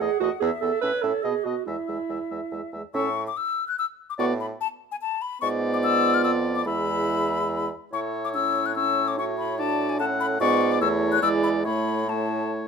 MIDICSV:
0, 0, Header, 1, 6, 480
1, 0, Start_track
1, 0, Key_signature, 3, "major"
1, 0, Tempo, 411805
1, 481, Time_signature, 3, 2, 24, 8
1, 1444, Tempo, 425532
1, 3844, Tempo, 413793
1, 12964, Tempo, 430416
1, 14580, End_track
2, 0, Start_track
2, 0, Title_t, "Flute"
2, 0, Program_c, 0, 73
2, 0, Note_on_c, 0, 78, 77
2, 458, Note_off_c, 0, 78, 0
2, 487, Note_on_c, 0, 76, 89
2, 961, Note_on_c, 0, 73, 78
2, 978, Note_off_c, 0, 76, 0
2, 1434, Note_on_c, 0, 75, 76
2, 1452, Note_off_c, 0, 73, 0
2, 1916, Note_off_c, 0, 75, 0
2, 1925, Note_on_c, 0, 76, 68
2, 3105, Note_off_c, 0, 76, 0
2, 3367, Note_on_c, 0, 85, 110
2, 3701, Note_off_c, 0, 85, 0
2, 3736, Note_on_c, 0, 86, 99
2, 3849, Note_on_c, 0, 88, 106
2, 3866, Note_off_c, 0, 86, 0
2, 4200, Note_off_c, 0, 88, 0
2, 4207, Note_on_c, 0, 90, 106
2, 4324, Note_off_c, 0, 90, 0
2, 4330, Note_on_c, 0, 88, 113
2, 4411, Note_off_c, 0, 88, 0
2, 4691, Note_on_c, 0, 86, 101
2, 4744, Note_off_c, 0, 86, 0
2, 4803, Note_on_c, 0, 85, 111
2, 4873, Note_off_c, 0, 85, 0
2, 5044, Note_on_c, 0, 83, 102
2, 5113, Note_off_c, 0, 83, 0
2, 5283, Note_on_c, 0, 81, 127
2, 5363, Note_off_c, 0, 81, 0
2, 5640, Note_on_c, 0, 80, 110
2, 5693, Note_off_c, 0, 80, 0
2, 5756, Note_on_c, 0, 81, 127
2, 5990, Note_on_c, 0, 83, 116
2, 6008, Note_off_c, 0, 81, 0
2, 6209, Note_off_c, 0, 83, 0
2, 6216, Note_on_c, 0, 85, 127
2, 6297, Note_off_c, 0, 85, 0
2, 6588, Note_on_c, 0, 86, 108
2, 6640, Note_off_c, 0, 86, 0
2, 6708, Note_on_c, 0, 88, 127
2, 7064, Note_on_c, 0, 89, 120
2, 7081, Note_off_c, 0, 88, 0
2, 7171, Note_off_c, 0, 89, 0
2, 7178, Note_on_c, 0, 88, 113
2, 7260, Note_off_c, 0, 88, 0
2, 7544, Note_on_c, 0, 86, 107
2, 7651, Note_off_c, 0, 86, 0
2, 7658, Note_on_c, 0, 83, 127
2, 8859, Note_off_c, 0, 83, 0
2, 9138, Note_on_c, 0, 85, 104
2, 9219, Note_off_c, 0, 85, 0
2, 9503, Note_on_c, 0, 86, 100
2, 9556, Note_off_c, 0, 86, 0
2, 9620, Note_on_c, 0, 88, 109
2, 9983, Note_on_c, 0, 90, 97
2, 10000, Note_off_c, 0, 88, 0
2, 10087, Note_off_c, 0, 90, 0
2, 10094, Note_on_c, 0, 88, 118
2, 10469, Note_on_c, 0, 86, 97
2, 10486, Note_off_c, 0, 88, 0
2, 10585, Note_off_c, 0, 86, 0
2, 10595, Note_on_c, 0, 85, 111
2, 10665, Note_off_c, 0, 85, 0
2, 10819, Note_on_c, 0, 83, 97
2, 11051, Note_off_c, 0, 83, 0
2, 11058, Note_on_c, 0, 81, 113
2, 11416, Note_on_c, 0, 80, 104
2, 11433, Note_off_c, 0, 81, 0
2, 11520, Note_off_c, 0, 80, 0
2, 11527, Note_on_c, 0, 81, 125
2, 11597, Note_off_c, 0, 81, 0
2, 11774, Note_on_c, 0, 83, 127
2, 11844, Note_off_c, 0, 83, 0
2, 12008, Note_on_c, 0, 85, 127
2, 12368, Note_on_c, 0, 86, 113
2, 12385, Note_off_c, 0, 85, 0
2, 12474, Note_off_c, 0, 86, 0
2, 12481, Note_on_c, 0, 88, 127
2, 12562, Note_off_c, 0, 88, 0
2, 12840, Note_on_c, 0, 90, 127
2, 12953, Note_off_c, 0, 90, 0
2, 12960, Note_on_c, 0, 88, 127
2, 13027, Note_off_c, 0, 88, 0
2, 13191, Note_on_c, 0, 83, 120
2, 13258, Note_off_c, 0, 83, 0
2, 13440, Note_on_c, 0, 83, 111
2, 13926, Note_on_c, 0, 81, 91
2, 13942, Note_off_c, 0, 83, 0
2, 14404, Note_off_c, 0, 81, 0
2, 14580, End_track
3, 0, Start_track
3, 0, Title_t, "Oboe"
3, 0, Program_c, 1, 68
3, 21, Note_on_c, 1, 75, 66
3, 124, Note_off_c, 1, 75, 0
3, 266, Note_on_c, 1, 75, 67
3, 368, Note_off_c, 1, 75, 0
3, 496, Note_on_c, 1, 76, 70
3, 600, Note_off_c, 1, 76, 0
3, 737, Note_on_c, 1, 76, 62
3, 841, Note_off_c, 1, 76, 0
3, 968, Note_on_c, 1, 76, 66
3, 1075, Note_off_c, 1, 76, 0
3, 1206, Note_on_c, 1, 76, 56
3, 1314, Note_off_c, 1, 76, 0
3, 1451, Note_on_c, 1, 75, 63
3, 1556, Note_off_c, 1, 75, 0
3, 1697, Note_on_c, 1, 75, 51
3, 1802, Note_off_c, 1, 75, 0
3, 1932, Note_on_c, 1, 76, 58
3, 2039, Note_off_c, 1, 76, 0
3, 2163, Note_on_c, 1, 76, 44
3, 2273, Note_off_c, 1, 76, 0
3, 2411, Note_on_c, 1, 76, 48
3, 2518, Note_off_c, 1, 76, 0
3, 2652, Note_on_c, 1, 76, 43
3, 2759, Note_off_c, 1, 76, 0
3, 2885, Note_on_c, 1, 76, 49
3, 2994, Note_off_c, 1, 76, 0
3, 3125, Note_on_c, 1, 76, 38
3, 3234, Note_off_c, 1, 76, 0
3, 3367, Note_on_c, 1, 76, 76
3, 3534, Note_off_c, 1, 76, 0
3, 4796, Note_on_c, 1, 74, 77
3, 4965, Note_off_c, 1, 74, 0
3, 6236, Note_on_c, 1, 74, 105
3, 7621, Note_off_c, 1, 74, 0
3, 7679, Note_on_c, 1, 76, 89
3, 8870, Note_off_c, 1, 76, 0
3, 9135, Note_on_c, 1, 73, 71
3, 10056, Note_off_c, 1, 73, 0
3, 10108, Note_on_c, 1, 73, 75
3, 10575, Note_off_c, 1, 73, 0
3, 10588, Note_on_c, 1, 73, 72
3, 11060, Note_on_c, 1, 74, 84
3, 11077, Note_off_c, 1, 73, 0
3, 11534, Note_off_c, 1, 74, 0
3, 11539, Note_on_c, 1, 78, 99
3, 12000, Note_off_c, 1, 78, 0
3, 12013, Note_on_c, 1, 74, 104
3, 12478, Note_on_c, 1, 73, 103
3, 12496, Note_off_c, 1, 74, 0
3, 12961, Note_on_c, 1, 74, 99
3, 12978, Note_off_c, 1, 73, 0
3, 13429, Note_off_c, 1, 74, 0
3, 13435, Note_on_c, 1, 73, 84
3, 13910, Note_off_c, 1, 73, 0
3, 13929, Note_on_c, 1, 73, 70
3, 14580, Note_off_c, 1, 73, 0
3, 14580, End_track
4, 0, Start_track
4, 0, Title_t, "Clarinet"
4, 0, Program_c, 2, 71
4, 0, Note_on_c, 2, 68, 107
4, 228, Note_off_c, 2, 68, 0
4, 235, Note_on_c, 2, 66, 107
4, 344, Note_off_c, 2, 66, 0
4, 466, Note_on_c, 2, 68, 112
4, 577, Note_off_c, 2, 68, 0
4, 707, Note_on_c, 2, 69, 108
4, 944, Note_off_c, 2, 69, 0
4, 951, Note_on_c, 2, 71, 124
4, 1192, Note_on_c, 2, 69, 107
4, 1209, Note_off_c, 2, 71, 0
4, 1430, Note_on_c, 2, 68, 100
4, 1447, Note_off_c, 2, 69, 0
4, 1675, Note_on_c, 2, 66, 84
4, 1692, Note_off_c, 2, 68, 0
4, 1909, Note_off_c, 2, 66, 0
4, 1916, Note_on_c, 2, 64, 79
4, 3100, Note_off_c, 2, 64, 0
4, 3369, Note_on_c, 2, 69, 82
4, 3535, Note_off_c, 2, 69, 0
4, 4802, Note_on_c, 2, 66, 85
4, 4969, Note_off_c, 2, 66, 0
4, 6237, Note_on_c, 2, 65, 105
4, 7622, Note_off_c, 2, 65, 0
4, 7670, Note_on_c, 2, 64, 81
4, 8866, Note_off_c, 2, 64, 0
4, 9136, Note_on_c, 2, 69, 75
4, 9628, Note_on_c, 2, 64, 72
4, 9646, Note_off_c, 2, 69, 0
4, 10571, Note_off_c, 2, 64, 0
4, 10578, Note_on_c, 2, 66, 77
4, 11049, Note_off_c, 2, 66, 0
4, 11055, Note_on_c, 2, 66, 82
4, 11535, Note_on_c, 2, 69, 90
4, 11552, Note_off_c, 2, 66, 0
4, 11994, Note_off_c, 2, 69, 0
4, 12001, Note_on_c, 2, 65, 100
4, 12462, Note_on_c, 2, 64, 108
4, 12480, Note_off_c, 2, 65, 0
4, 12945, Note_off_c, 2, 64, 0
4, 12952, Note_on_c, 2, 64, 114
4, 13428, Note_off_c, 2, 64, 0
4, 13437, Note_on_c, 2, 64, 81
4, 13912, Note_off_c, 2, 64, 0
4, 13921, Note_on_c, 2, 64, 79
4, 14580, Note_off_c, 2, 64, 0
4, 14580, End_track
5, 0, Start_track
5, 0, Title_t, "French horn"
5, 0, Program_c, 3, 60
5, 240, Note_on_c, 3, 57, 61
5, 348, Note_off_c, 3, 57, 0
5, 478, Note_on_c, 3, 59, 71
5, 586, Note_off_c, 3, 59, 0
5, 713, Note_on_c, 3, 59, 70
5, 822, Note_off_c, 3, 59, 0
5, 962, Note_on_c, 3, 61, 66
5, 1070, Note_off_c, 3, 61, 0
5, 1205, Note_on_c, 3, 61, 65
5, 1313, Note_off_c, 3, 61, 0
5, 1457, Note_on_c, 3, 59, 57
5, 1561, Note_off_c, 3, 59, 0
5, 1688, Note_on_c, 3, 59, 49
5, 1795, Note_off_c, 3, 59, 0
5, 1926, Note_on_c, 3, 56, 53
5, 2034, Note_off_c, 3, 56, 0
5, 2172, Note_on_c, 3, 56, 50
5, 2279, Note_off_c, 3, 56, 0
5, 2409, Note_on_c, 3, 56, 42
5, 2516, Note_off_c, 3, 56, 0
5, 2651, Note_on_c, 3, 56, 43
5, 2758, Note_off_c, 3, 56, 0
5, 2901, Note_on_c, 3, 56, 47
5, 3006, Note_off_c, 3, 56, 0
5, 3142, Note_on_c, 3, 56, 44
5, 3247, Note_off_c, 3, 56, 0
5, 3367, Note_on_c, 3, 61, 79
5, 3534, Note_off_c, 3, 61, 0
5, 4794, Note_on_c, 3, 59, 84
5, 4964, Note_off_c, 3, 59, 0
5, 6222, Note_on_c, 3, 59, 92
5, 7614, Note_off_c, 3, 59, 0
5, 7659, Note_on_c, 3, 56, 83
5, 8860, Note_off_c, 3, 56, 0
5, 9135, Note_on_c, 3, 64, 69
5, 9618, Note_on_c, 3, 61, 66
5, 9635, Note_off_c, 3, 64, 0
5, 10097, Note_off_c, 3, 61, 0
5, 10104, Note_on_c, 3, 61, 77
5, 10588, Note_on_c, 3, 64, 78
5, 10605, Note_off_c, 3, 61, 0
5, 11068, Note_on_c, 3, 62, 78
5, 11085, Note_off_c, 3, 64, 0
5, 11548, Note_on_c, 3, 61, 93
5, 11565, Note_off_c, 3, 62, 0
5, 12014, Note_off_c, 3, 61, 0
5, 12019, Note_on_c, 3, 59, 93
5, 12481, Note_on_c, 3, 57, 93
5, 12498, Note_off_c, 3, 59, 0
5, 12951, Note_off_c, 3, 57, 0
5, 12958, Note_on_c, 3, 56, 99
5, 13440, Note_on_c, 3, 57, 84
5, 13457, Note_off_c, 3, 56, 0
5, 13907, Note_off_c, 3, 57, 0
5, 13914, Note_on_c, 3, 57, 72
5, 14580, Note_off_c, 3, 57, 0
5, 14580, End_track
6, 0, Start_track
6, 0, Title_t, "Bassoon"
6, 0, Program_c, 4, 70
6, 5, Note_on_c, 4, 40, 72
6, 112, Note_off_c, 4, 40, 0
6, 237, Note_on_c, 4, 40, 73
6, 345, Note_off_c, 4, 40, 0
6, 479, Note_on_c, 4, 40, 99
6, 587, Note_off_c, 4, 40, 0
6, 719, Note_on_c, 4, 40, 66
6, 827, Note_off_c, 4, 40, 0
6, 961, Note_on_c, 4, 45, 71
6, 1070, Note_off_c, 4, 45, 0
6, 1203, Note_on_c, 4, 45, 82
6, 1312, Note_off_c, 4, 45, 0
6, 1447, Note_on_c, 4, 47, 74
6, 1553, Note_off_c, 4, 47, 0
6, 1680, Note_on_c, 4, 47, 58
6, 1788, Note_off_c, 4, 47, 0
6, 1927, Note_on_c, 4, 40, 69
6, 2035, Note_off_c, 4, 40, 0
6, 2169, Note_on_c, 4, 40, 53
6, 2277, Note_off_c, 4, 40, 0
6, 2404, Note_on_c, 4, 40, 50
6, 2513, Note_off_c, 4, 40, 0
6, 2647, Note_on_c, 4, 40, 53
6, 2755, Note_off_c, 4, 40, 0
6, 2879, Note_on_c, 4, 40, 50
6, 2989, Note_off_c, 4, 40, 0
6, 3123, Note_on_c, 4, 40, 50
6, 3232, Note_off_c, 4, 40, 0
6, 3361, Note_on_c, 4, 45, 90
6, 3762, Note_off_c, 4, 45, 0
6, 4795, Note_on_c, 4, 45, 100
6, 5197, Note_off_c, 4, 45, 0
6, 6228, Note_on_c, 4, 44, 101
6, 7174, Note_on_c, 4, 41, 88
6, 7192, Note_off_c, 4, 44, 0
6, 7655, Note_off_c, 4, 41, 0
6, 7662, Note_on_c, 4, 40, 103
6, 8862, Note_off_c, 4, 40, 0
6, 9131, Note_on_c, 4, 45, 88
6, 11960, Note_off_c, 4, 45, 0
6, 12000, Note_on_c, 4, 44, 115
6, 12443, Note_off_c, 4, 44, 0
6, 12478, Note_on_c, 4, 40, 106
6, 12952, Note_off_c, 4, 40, 0
6, 12957, Note_on_c, 4, 40, 96
6, 13441, Note_on_c, 4, 45, 99
6, 13458, Note_off_c, 4, 40, 0
6, 14580, Note_off_c, 4, 45, 0
6, 14580, End_track
0, 0, End_of_file